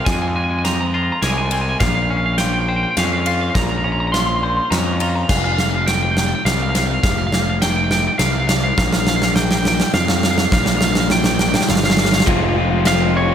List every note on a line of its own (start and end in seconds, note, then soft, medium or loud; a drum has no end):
0.00 0.34 G#3 medium
0.00 0.64 C4 medium
0.00 0.94 F4 medium
0.05 1.52 F2 medium
0.05 1.10 F2 medium
0.05 0.12 G#5 medium
0.05 kick loud
0.05 snare medium
0.05 ride medium
0.12 0.20 G#5 medium
0.22 0.27 G#5 medium
0.28 0.35 G#5 medium
0.35 1.23 G#3 medium
0.35 0.43 G#5 medium
0.44 0.50 G#5 medium
0.51 0.58 G#5 medium
0.59 0.64 G#5 medium
0.64 1.52 C4 medium
0.64 0.73 A#5 medium
0.64 snare medium
0.64 ride medium
0.74 0.80 A#5 medium
0.81 0.87 A#5 medium
0.87 0.95 A#5 medium
0.94 2.40 F4 medium
0.94 1.03 A#5 medium
1.03 1.11 A#5 medium
1.12 1.20 A#5 medium
1.22 1.74 C2 medium
1.22 1.82 G#3 medium
1.22 1.29 G#5 medium
1.22 snare medium
1.22 ride medium
1.29 1.37 G#5 medium
1.38 1.45 G#5 medium
1.45 1.52 G#5 medium
1.51 1.85 C4 medium
1.51 1.60 G#5 medium
1.51 ride medium
1.61 1.69 G#5 medium
1.69 1.77 G#5 medium
1.80 2.84 A#1 loud
1.80 3.27 A#2 medium
1.80 1.87 F5 medium
1.80 kick loud
1.80 snare medium
1.80 ride medium
1.87 1.94 F5 medium
1.95 2.02 F5 medium
2.03 2.10 F5 medium
2.10 2.97 C#4 medium
2.10 2.17 F5 medium
2.17 2.25 F5 medium
2.26 2.33 F5 medium
2.33 2.37 F5 medium
2.38 3.26 F4 medium
2.38 2.45 G5 medium
2.38 snare medium
2.38 ride medium
2.45 2.53 G5 medium
2.53 2.60 G5 medium
2.60 2.68 G5 medium
2.68 4.14 C5 medium
2.68 2.76 G5 medium
2.76 2.83 G5 medium
2.83 2.90 G5 medium
2.91 2.97 G5 medium
2.97 3.49 F2 medium
2.97 3.83 C#4 medium
2.97 3.05 F5 medium
2.97 snare medium
2.97 ride medium
3.05 3.13 F5 medium
3.13 3.20 F5 medium
3.20 3.26 F5 medium
3.26 4.13 F4 medium
3.26 3.34 F5 medium
3.26 ride medium
3.35 3.41 F5 medium
3.41 3.49 F5 medium
3.50 3.54 F5 medium
3.55 4.58 A#1 loud
3.55 5.01 A#2 medium
3.55 3.62 A#5 loud
3.55 kick loud
3.55 snare medium
3.55 ride medium
3.62 3.69 A#5 medium
3.69 3.77 A#5 medium
3.78 3.84 A#5 medium
3.84 4.70 C#4 medium
3.84 3.92 A#5 medium
3.92 4.00 A#5 medium
4.00 4.07 A#5 medium
4.07 4.12 A#5 medium
4.12 4.99 F4 medium
4.12 4.20 C6 medium
4.12 snare medium
4.12 ride medium
4.20 4.26 C6 medium
4.27 4.34 C6 medium
4.36 4.43 C6 medium
4.43 5.30 C5 medium
4.43 4.49 C6 medium
4.50 4.56 C6 medium
4.57 4.64 C6 medium
4.65 4.70 C6 medium
4.71 5.23 F2 medium
4.71 5.30 C#4 medium
4.71 4.77 A#5 medium
4.71 snare medium
4.71 ride medium
4.78 4.85 A#5 medium
4.85 4.93 A#5 medium
4.93 5.01 A#5 medium
5.00 5.30 F4 medium
5.00 5.09 A#5 medium
5.00 ride medium
5.09 5.15 A#5 medium
5.16 5.23 A#5 medium
5.23 5.29 A#5 medium
5.29 6.33 F1 loud
5.29 5.37 F5 medium
5.29 kick medium
5.29 snare medium
5.29 crash medium
5.37 5.44 F5 medium
5.44 5.51 F5 medium
5.52 5.59 F5 medium
5.58 5.66 F5 medium
5.58 snare medium
5.66 5.74 F5 medium
5.75 5.81 F5 medium
5.82 5.86 F5 medium
5.87 5.94 G5 medium
5.87 snare medium
5.87 ride medium
5.95 6.02 G5 medium
6.03 6.10 G5 medium
6.11 6.18 G5 medium
6.17 6.26 G5 medium
6.17 snare medium
6.26 6.34 G5 medium
6.35 6.43 G5 medium
6.45 6.97 C2 medium
6.45 6.53 F5 medium
6.45 snare medium
6.45 ride medium
6.54 6.62 F5 medium
6.62 6.69 F5 medium
6.69 6.77 F5 medium
6.75 6.86 F5 medium
6.75 snare medium
6.75 ride medium
6.87 6.93 F5 medium
6.94 7.02 F5 medium
7.03 8.07 F1 loud
7.03 7.11 F5 medium
7.03 kick loud
7.03 snare medium
7.03 ride medium
7.11 7.18 F5 medium
7.18 7.26 F5 medium
7.27 7.34 F5 medium
7.32 7.42 F5 medium
7.32 snare medium
7.42 7.49 F5 medium
7.50 7.57 F5 medium
7.62 7.69 G5 loud
7.62 snare medium
7.62 ride medium
7.70 7.76 G5 medium
7.76 7.84 G5 medium
7.84 7.91 G5 medium
7.91 7.99 G5 medium
7.91 snare medium
8.00 8.07 G5 medium
8.07 8.14 G5 medium
8.14 8.18 G5 medium
8.18 8.71 C2 medium
8.18 8.25 F5 medium
8.18 snare medium
8.18 ride medium
8.25 8.32 F5 medium
8.33 8.39 F5 medium
8.40 8.47 F5 medium
8.48 8.55 F5 medium
8.48 snare loud
8.48 ride medium
8.56 8.63 F5 medium
8.64 8.69 F5 medium
8.69 8.76 F5 medium
8.78 9.81 A#1 loud
8.78 8.85 F5 medium
8.78 kick loud
8.78 snare medium
8.85 8.93 F5 medium
8.93 8.99 F5 medium
8.93 snare medium
9.00 9.07 F5 medium
9.07 9.16 F5 medium
9.07 snare loud
9.16 9.23 F5 medium
9.22 9.31 F5 medium
9.22 snare medium
9.31 9.35 F5 medium
9.35 9.42 G5 medium
9.35 snare loud
9.43 9.51 G5 medium
9.51 9.58 G5 medium
9.51 snare loud
9.59 9.66 G5 medium
9.65 9.74 G5 medium
9.65 snare loud
9.75 9.82 G5 medium
9.80 9.91 G5 medium
9.80 snare loud
9.94 10.46 F2 medium
9.94 10.00 F5 medium
9.94 snare loud
10.01 10.08 F5 medium
10.08 10.15 F5 medium
10.08 snare loud
10.16 10.23 F5 medium
10.23 10.30 F5 medium
10.23 snare loud
10.31 10.37 F5 medium
10.38 10.45 F5 medium
10.38 snare loud
10.46 10.53 F5 medium
10.52 11.55 A#1 loud
10.52 10.60 F5 loud
10.52 kick loud
10.52 snare loud
10.61 10.68 F5 medium
10.66 10.76 F5 medium
10.66 snare loud
10.77 10.84 F5 medium
10.77 snare loud
10.84 10.92 F5 medium
10.92 11.00 F5 medium
10.92 snare loud
11.00 11.08 F5 medium
11.10 11.18 G5 medium
11.10 snare loud
11.19 11.26 G5 medium
11.24 11.33 G5 medium
11.24 snare loud
11.34 11.41 G5 medium
11.39 11.48 G5 medium
11.39 snare loud
11.49 11.55 G5 medium
11.54 11.63 G5 medium
11.54 snare loud
11.61 11.70 G5 medium
11.61 snare loud
11.69 12.21 G1 loud
11.69 11.78 F5 medium
11.69 snare loud
11.76 11.85 F5 medium
11.76 snare loud
11.83 11.92 F5 medium
11.83 snare loud
11.90 12.00 F5 medium
11.90 snare loud
11.97 12.08 F5 medium
11.97 snare loud
12.05 12.15 F5 medium
12.05 snare loud
12.13 12.23 F5 medium
12.13 snare loud
12.20 snare loud
12.26 13.30 F1 loud
12.26 12.55 F3 medium
12.26 12.55 G#3 medium
12.26 12.56 C4 loud
12.26 12.57 F4 loud
12.26 kick loud
12.26 ride medium
12.55 12.85 F3 medium
12.55 12.71 G#3 medium
12.55 12.70 C4 medium
12.55 12.70 F4 medium
12.70 12.85 G#3 medium
12.70 12.86 C4 medium
12.70 12.87 F4 medium
12.85 13.35 F3 medium
12.85 13.29 G#3 loud
12.85 13.28 C4 medium
12.85 13.28 F4 medium
12.85 13.13 F5 loud
12.85 snare medium
12.85 ride medium
13.17 13.35 C#5 medium
13.28 13.35 G#3 medium
13.28 13.35 C4 medium
13.28 13.35 F4 medium